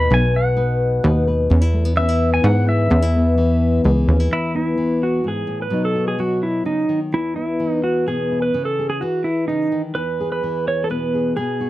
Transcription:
Already playing: B4 B5
0.10 B1 B2 B4 G#5
0.34 F#4 F#5
0.57 D#4 B4
1.04 D#2 D#4 B4
1.27 B4
1.50 E2 C#4
1.62 E4
1.73 A3
1.85 B3
1.96 E3 C#4 E5
2.09 E4
2.34 G#5
2.44 G#2 E3 G#4 F#5
2.67 E4 E5
2.90 E2 C#4
3.02 E4
3.16 B3
3.38 E3 E4
3.84 C#2 E3 G#4
4.08 D#2 C#4
4.20 E4
4.31 E2 E4
4.55 B3 E4
4.78 E3
5.03 F#4
5.24 G#2
5.28 G#4
5.47 A2
5.62 B4
5.70 B2 F#3 B3 D#4 F#4
5.85 A4
5.95 F#4
6.08 G#4
6.18 F#3 F#4
6.43 E4
6.65 C#3 D#4
6.89 D#3
7.12 E2 E4
7.36 B3 E4
7.60 E3
7.69 D#4
7.84 F#4
8.07 B2 B3 G#4
8.31 E4
8.42 B4
8.54 C#3
8.65 A4
8.79 G#4
8.90 G#4
9.01 E3 F#4
9.24 E4
9.48 C#3 D#4
9.72 D#3
9.95 E2 B4
10.20 G#4
10.32 B4
10.43 E3
10.68 C#5
10.84 A4
10.90 B2 B3 B4
11.14 G#4
11.37 B2 G#4
11.60 F#4

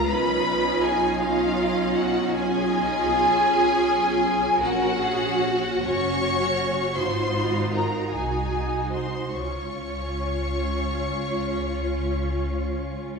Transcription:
0.05 B1 C#4 D#4 F4 B4 B5
0.82 G#4 G#5
1.19 C#4 F4 F5
1.95 F#4 F#5
2.33 C#4 F4 G#4 G#5
2.72 D#4
3.11 F4
3.49 G#4
4.61 A#1 C#4 F#4 A#4 F#5
5.01 G#4
5.42 F#4
5.83 F#1 C#4 F#4 C#5 C#6
6.96 G#1 D#4 F4 F#4 C5 C6
7.75 A#4 A#5
8.13 C2 D#4 F#4 G#4 G#5
8.92 C5 C6
9.33 C#2 C#4 F4 C#5 C#6

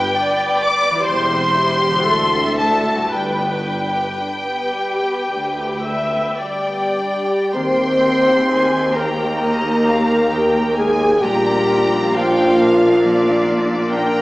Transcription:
Already playing: G2 D4 G4 B4 G5
0.17 D4 D5
0.38 B3
0.63 G3 D6
0.85 B3
0.91 E3
0.95 E4
1.00 G4
1.04 G3 C5
1.08 E1 E2 C5 C6
1.33 C4
1.55 E4 G4
1.82 G4
1.88 D3
1.93 E4 F#4
2.02 D2 A4
2.07 D2 A3 A4 E5
2.34 C4
2.60 D4 A5
2.87 F#4
2.95 G2
3.00 D4
3.04 G4
3.09 B4
3.13 G1 G2 G3 B4 G5
3.40 B3
3.68 D4
3.93 G4
4.20 D4 G4
4.48 B3
4.75 G3
5.03 B3
5.31 D2 D4
5.59 G4
5.85 D4 E5
6.14 B3
6.39 G3 G4 D5 G5
6.69 B3
7.00 D4
7.29 G4
7.54 D#2 D#3 A#3 C4 G4 C5 G5 C6
8.06 G4
8.50 D#4 G#5
8.95 A#3 A#4 G5 A#5
9.42 A#3 D#5
9.86 G4 F5
10.32 D#4 G5
10.77 G#3 G#4 A#4 G#5
11.22 A#1 A#2 G3 A#3 D4 G4 G5 A#5
11.70 F4
12.15 F3 D4 F4 F5 G5
12.60 A#4 F5
13.05 F3 D5
13.47 F4
13.90 A#3 D4 A#4 G5 A#5

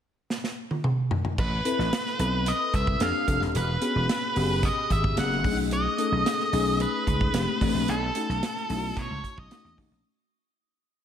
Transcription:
0.30 snare
0.44 snare
0.71 high tom
0.84 mid tom
1.11 floor tom
1.25 floor tom
1.38 A1 B4, kick, crash
1.65 C4 E4 A4 B4, closed hi-hat
1.79 A1, snare
1.93 snare, closed hi-hat
2.06 snare
2.19 B1 C4 E4 A4 B4, closed hi-hat
2.46 D#5, closed hi-hat
2.74 C2 E5, kick, closed hi-hat
2.87 kick
3.00 F2 C4 D4 G4 A4 F5, snare, closed hi-hat
3.27 F1 C4 D4 G4 A4, kick, closed hi-hat
3.41 D#1, snare
3.55 E1 B4, closed hi-hat
3.81 B3 C#4 F#4 G#4, closed hi-hat
3.95 E1
4.09 snare, closed hi-hat
4.35 F#1 B3 C#4 F#4 G4, open hi-hat
4.43 G#4
4.63 D#5, kick, closed hi-hat
4.90 G#1 E5, kick, closed hi-hat
5.04 kick
5.17 F#1 B3 C#4 F#4 G#4 F#5, snare, closed hi-hat
5.31 snare
5.43 B1 A3 C#4 D4 G#4, kick, open hi-hat
5.51 D#4
5.71 D#5, closed hi-hat
5.98 A3 C#4 D#4 A4, closed hi-hat
6.12 B1
6.26 snare, closed hi-hat
6.40 snare
6.52 B1 A3 C#4 D#4 G#4, open hi-hat
6.80 B4, closed hi-hat
7.07 C#2, kick, closed hi-hat
7.21 kick
7.33 F1 A3 C4 D4 G4, snare, closed hi-hat
7.61 A1 A3 C4 D4 G4, kick, open hi-hat
7.74 A#1
7.88 B1 A4, closed hi-hat
8.15 A3 C#4 D#4 F#4, closed hi-hat
8.29 B1, snare
8.43 snare, closed hi-hat
8.57 snare
8.69 B1 A3 C#4 D#4 E4, open hi-hat
8.77 F#4
8.97 B2 C#5, kick, closed hi-hat
9.10 C#2
9.24 kick, closed hi-hat
9.38 B1 D#5, kick
9.50 A3 C#4 D#4 F#4, snare, closed hi-hat
9.64 E2, snare
9.77 D#2 A3 C#4 D#4 F#4, kick, open hi-hat
9.91 A#1

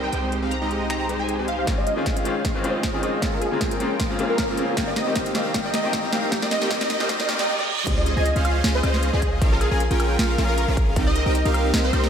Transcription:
Already playing: C2 G3 C4 D#4 A#4 C5
0.03 G5
0.12 C2 G#3 C4 D#4 G4 C5 G5, closed hi-hat
0.32 G4, closed hi-hat
0.42 G#3 C4 D#4 G4 F5 G5
0.51 C5 A#5, closed hi-hat
0.62 G#3 C4 D#4 G4 D#5
0.71 G4, closed hi-hat
0.90 G#3 C4 D#4 G4 C5 A#5, finger snap, closed hi-hat
1.00 G5 A#5
1.09 G#3 C4 D#4 G4 G#4 C5, closed hi-hat
1.19 G#5
1.29 G#4, closed hi-hat
1.39 G#3 C4 D#4 G4 C5
1.48 D#5 F5, closed hi-hat
1.59 C5
1.66 C#2 D#3 G#3 C4 C#4 F4 G#4 C5 D#5, kick, snare, closed hi-hat, riser
1.78 D#5
1.87 D#5, closed hi-hat
1.96 C#2 D#3 G#3 C4 C#4 F4 G#4 C5 G#5
2.06 kick, snare, closed hi-hat
2.16 C#2 C#4 F4 G#4 C5 F5, closed hi-hat
2.25 D#3 G#3 C4 C#4 F4, closed hi-hat
2.45 C#2 C#4 F4 G#4 C5 D#5, kick, snare, closed hi-hat
2.54 D#3 G#3 C4 C#4 F4 C5
2.63 C#2 D#3 G#3 C4 C#4 F4 G#4 C5 D#5, closed hi-hat
2.83 kick, snare, closed hi-hat
2.93 C#2 D#3 G#3 C4 C#4 F4 G#4 C5 D#5
3.02 D#3 G#3 C4 C#4 F4 G#4, closed hi-hat
3.21 A#1 C#3 G#3 A#3 C4 C#4 F4 G#4 A#4 F5, kick, snare, closed hi-hat
3.33 A#4
3.41 G#4, closed hi-hat
3.51 A#1 C#3 G#3 A#3 C4 C#4 F4 G#4 A#4 G#5
3.61 kick, snare, closed hi-hat
3.71 A#1 C#4 F4 G#4 A#4 G5, closed hi-hat
3.80 C#3 G#3 A#3 C4 F4, closed hi-hat
4.00 A#1 C#4 F4 G#4 A#4 F5, kick, snare, closed hi-hat
4.09 C#3 G#3 A#3 C4 F4
4.18 A#1 C#3 G#3 A#3 C4 C#4 F4 G#4 A#4 F5, closed hi-hat
4.29 A#4
4.38 A#4, kick, snare, closed hi-hat
4.48 A#1 C#3 G#3 A#3 C4 C#4 F4 G#4 A#4 F5
4.57 C#3 G#3 A#3 C4 F4, closed hi-hat
4.76 C2 D#3 G3 A#3 C4 D#4 G4 A#4 D#5, kick, snare, closed hi-hat
4.88 D#5
4.96 D#5, snare, closed hi-hat
5.06 C2 D#3 G3 A#3 C4 D#4 G4 A#4 G5
5.16 kick, snare, closed hi-hat
5.26 C2 C4 D#4 G4 A#4 F5, closed hi-hat
5.34 D#3 G3 A#3 C4 G4, snare, closed hi-hat
5.53 C2 D#3 G3 A#3 C4 D#4 G4 A#4 D#5, kick, snare, closed hi-hat
5.65 D#5
5.74 D#5, snare, closed hi-hat
5.83 C2 D#3 G3 A#3 C4 D#4 G4 A#4 G5
5.93 kick, snare, closed hi-hat
6.04 C2 C4 D#4 G4 A#4 F5
6.12 D#3 G3 A#3 C4 G4, snare, closed hi-hat
6.31 D#3 G3 A#3 C4 D#4 G4 A#4 D#5, kick, snare, closed hi-hat
6.42 D#5, snare
6.51 D#5, snare, closed hi-hat
6.61 C2 D#3 G3 A#3 C4 D#4 G4 A#4 G5, snare
6.70 D#3 G3 A#3 C4 D#4 G4 A#4 D#5, kick, snare, closed hi-hat
6.81 D#5, snare, closed hi-hat
6.90 D#5, snare, closed hi-hat
7.00 C2 D#3 G3 A#3 C4 D#4 G4 A#4 G5, snare
7.08 D#3 G3 A#3 C4 D#4 G4 A#4 D#5, kick, snare, closed hi-hat, reverse cymbal
7.20 D#5, snare
7.28 C2 D#3 G3 A#3 C4 D#4 G4 A#4 D#5, snare, closed hi-hat
7.39 D#5, snare
7.59 D#5
7.78 D#5
7.87 C#2 C#4 F4 G#4 C5 D#5, kick, closed hi-hat, crash, impact
7.97 D#5
8.06 D#5, closed hi-hat
8.17 C#2 C#4 F4 G#4 C5 G#5
8.26 closed hi-hat
8.36 C#2 C#4 F4 G#4 C5 F5, closed hi-hat
8.45 closed hi-hat, high woodblock
8.64 C#2 C#4 F4 G#4 C5 D#5, snare, closed hi-hat
8.75 C5
8.83 C#2 C#4 F4 G#4 C5 D#5, closed hi-hat, high woodblock
8.94 snare
9.03 closed hi-hat
9.13 C#2 C#4 F4 G#4 C5 D#5
9.22 G#4, kick, closed hi-hat
9.42 A#1 C#4 F4 G#4 A#4 F5, kick, closed hi-hat
9.52 A#4
9.61 G#4, closed hi-hat, high woodblock
9.71 A#1 C#4 F4 G#4 A#4 G#5
9.80 closed hi-hat
9.91 A#1 C#4 F4 G#4 A#4 G5, closed hi-hat
10.00 closed hi-hat, high woodblock
10.19 A#1 C#4 F4 G#4 A#4 F5, snare, closed hi-hat
10.38 A#1 C#4 F4 G#4 A#4 F5, snare, closed hi-hat
10.49 A#4
10.57 A#4, closed hi-hat
10.68 A#1 C#4 F4 G#4 A#4 F5
10.77 kick, closed hi-hat
10.96 C2 C4 D#4 G4 A#4 D#5, kick, closed hi-hat
11.07 D#5
11.16 D#5, closed hi-hat
11.26 C2 C4 D#4 G4 A#4 G5
11.35 closed hi-hat
11.45 C2 C4 D#4 G4 A#4 F5, closed hi-hat
11.54 closed hi-hat, high woodblock
11.74 C2 C4 D#4 G4 A#4 D#5, snare, closed hi-hat
11.84 C5
11.93 C2 C4 D#4 G4 A#4 D#5, closed hi-hat, high woodblock
12.04 snare

